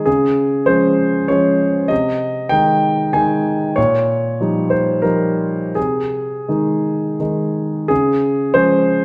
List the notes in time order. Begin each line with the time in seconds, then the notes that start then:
0.06 C#3 G#4
0.66 F3 G#3 C#4 C5
1.28 F3 G#3 C#4 C#5
1.88 C3 D#5
2.49 D#3 G#3 D#4 G5
3.13 D#3 G#3 D#4 G#5
3.76 A#2 C#5
4.41 F3 G3 D#4
4.70 C5
5.02 F3 G3 D#4 A#4
5.75 C3 G#4
6.48 D#3 G#3 D#4
7.20 D#3 G#3 D#4
7.88 C#3 G#4
8.54 F3 G#3 C#4 C5